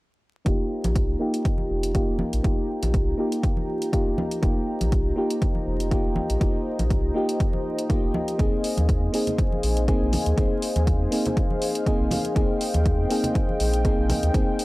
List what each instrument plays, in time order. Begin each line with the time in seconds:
0.45 analog synth bass F1, fm electric piano A#3 D#4 F4 G4, analog synth pad C5 D#5 G5 A#5, kick, closed hi-hat
0.84 analog synth bass A#1, closed hi-hat, high conga
0.96 kick, closed hi-hat
1.09 analog synth bass C2
1.19 fm electric piano A#3 D#4 F4 G4
1.34 closed hi-hat
1.45 kick, closed hi-hat
1.58 high conga
1.70 analog synth bass F1
1.83 closed hi-hat
1.94 fm electric piano A#3 D#4 F4 G4, kick, closed hi-hat
2.08 analog synth bass F1
2.19 high conga
2.33 analog synth bass A#1, closed hi-hat
2.43 analog synth bass F1, fm electric piano A#3 D#4 F4 G4, kick, closed hi-hat
2.83 analog synth bass A#1, closed hi-hat, high conga
2.94 kick, closed hi-hat
3.07 analog synth bass C2
3.18 fm electric piano A#3 D#4 F4 G4
3.32 closed hi-hat
3.43 kick, closed hi-hat
3.57 high conga
3.82 closed hi-hat
3.92 fm electric piano A#3 D#4 F4 G4, kick, closed hi-hat
4.07 analog synth bass F1
4.18 high conga
4.31 closed hi-hat
4.42 analog synth bass F1, fm electric piano A#3 D#4 F4 G4, kick, closed hi-hat
4.81 analog synth bass A#1, closed hi-hat, high conga
4.92 kick, closed hi-hat
5.06 analog synth bass C2
5.16 fm electric piano A#3 D#4 F4 G4
5.30 closed hi-hat
5.42 kick, closed hi-hat
5.55 high conga
5.67 analog synth bass F1
5.80 closed hi-hat
5.91 fm electric piano A#3 D#4 F4 G4, kick, closed hi-hat
6.05 analog synth bass F1
6.16 high conga
6.30 analog synth bass A#1, closed hi-hat
6.40 analog synth bass F1, fm electric piano A#3 D#4 F4 G4, kick, closed hi-hat
6.79 analog synth bass A#1, closed hi-hat, high conga
6.91 kick, closed hi-hat
7.04 analog synth bass C2
7.14 fm electric piano A#3 D#4 F4 G4
7.29 closed hi-hat
7.40 kick, closed hi-hat
7.53 high conga
7.78 closed hi-hat
7.89 fm electric piano A#3 D#4 F4 G4, kick, closed hi-hat
8.03 analog synth bass F1
8.14 high conga
8.28 closed hi-hat
8.38 analog synth bass A#1, fm electric piano A#3 C4 D#4 G#4, analog synth pad F5 G#5, kick, closed hi-hat
8.64 open hi-hat
8.77 analog synth bass D#2, closed hi-hat, high conga
8.89 kick, closed hi-hat
9.02 analog synth bass F2
9.12 fm electric piano A#3 C4 D#4 G#4, open hi-hat
9.27 closed hi-hat, low conga
9.38 kick, closed hi-hat
9.52 high conga
9.63 analog synth bass A#1, open hi-hat
9.77 closed hi-hat
9.87 fm electric piano A#3 C4 D#4 G#4, kick, closed hi-hat
10.01 analog synth bass A#1
10.12 open hi-hat, high conga, low conga
10.26 analog synth bass D#2, closed hi-hat
10.37 analog synth bass A#1, fm electric piano A#3 C4 D#4 G#4, kick, closed hi-hat
10.62 open hi-hat
10.76 analog synth bass D#2, closed hi-hat, high conga
10.87 kick, closed hi-hat
11.01 analog synth bass F2
11.11 fm electric piano A#3 C4 D#4 G#4, open hi-hat
11.26 closed hi-hat, low conga
11.37 kick, closed hi-hat
11.50 high conga
11.62 open hi-hat
11.75 closed hi-hat
11.86 fm electric piano A#3 C4 D#4 G#4, kick, closed hi-hat
12.00 analog synth bass A#1
12.11 open hi-hat, high conga, low conga
12.25 closed hi-hat
12.35 analog synth bass A#1, fm electric piano A#3 C4 D#4 G#4, analog synth pad G5, kick, closed hi-hat
12.61 open hi-hat
12.74 analog synth bass D#2, closed hi-hat, high conga
12.86 kick, closed hi-hat
12.99 analog synth bass F2
13.09 fm electric piano A#3 C4 D#4 G#4, open hi-hat
13.23 closed hi-hat, low conga
13.35 kick, closed hi-hat
13.49 high conga
13.60 analog synth bass A#1, open hi-hat
13.74 closed hi-hat
13.84 fm electric piano A#3 C4 D#4 G#4, kick, closed hi-hat
13.98 analog synth bass A#1
14.10 open hi-hat, high conga, low conga
14.23 analog synth bass D#2, closed hi-hat
14.33 analog synth bass A#1, fm electric piano A#3 C4 D#4 G#4, kick, closed hi-hat
14.59 open hi-hat